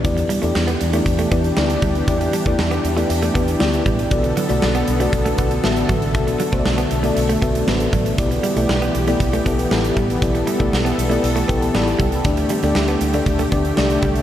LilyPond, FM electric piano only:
\new Staff \with { instrumentName = "FM electric piano" } { \time 4/4 \key e \minor \tempo 4 = 118 << { r1 | r1 | r1 | r1 |
r1 | r2 r8 g''16 a''16 b''4 | r1 | } \\ { <b e' g' d''>8. <b e' g' d''>4 <b e' g' d''>8. <b e' g' d''>8 <b e' g' d''>4 | <b e' g' d''>8. <b e' g' d''>4 <b e' g' d''>8. <b e' g' b'>8 <b e' g' d''>4 | <b fis' a' d''>8. <b fis' a' d''>4 <b fis' a' d''>8. <b fis' a' d''>8 <b fis' a' e''>4 | <b fis' a' e''>8. <b fis' a' c'' d''>4 <b fis' a' d''>8. <b fis' a' e''>8 <b fis' a' b'>4 |
<b e' g' d''>8. <a b e' g' d''>4 <b e' g' d''>8. <b e' g' a'>8 <b e' g' a'>4 | <b e' g' d''>8. <b e' g' d''>4 <b e' g' d''>8. <b e' g' a'>8 <b e' g' d''>4 | <a d' g' d''>8. <a d' g' d''>4 <a d' g' d''>8. <a d' g' d''>8 <a d' g' d''>4 | } >> }